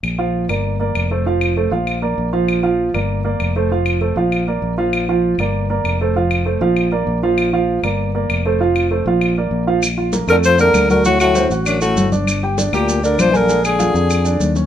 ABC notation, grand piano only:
X:1
M:4/4
L:1/8
Q:1/4=196
K:Bb
V:1 name="Grand piano"
z [F,Ff]2 [B,Bd]2 [B,Bd]2 [A,Ac] | [F,Ff]2 [A,Ac] [F,Ff]2 [B,Bd]2 [F,Ff]- | [F,Ff] [F,Ff]2 [B,Bd]2 [B,Bd]2 [A,Ac] | [F,Ff]2 [A,Ac] [F,Ff]2 [B,Bd]2 [F,Ff]- |
[F,Ff] [F,Ff]2 [B,Bd]2 [B,Bd]2 [A,Ac] | [F,Ff]2 [A,Ac] [F,Ff]2 [B,Bd]2 [F,Ff]- | [F,Ff] [F,Ff]2 [B,Bd]2 [B,Bd]2 [A,Ac] | [F,Ff]2 [A,Ac] [F,Ff]2 [B,Bd]2 [F,Ff] |
z [Ff] [B,B] [A,A]2 [B,B]2 [_G_g] | [^F,^F]2 [Cc] [F^f]2 [A,A]2 [Dd]- | [Dd] [Gg] [Dd] [B,B]2 [Dd]2 [_A_a] | [_A,_A]2 [Ff] [A_a]2 [Dd]2 [_D_d] |]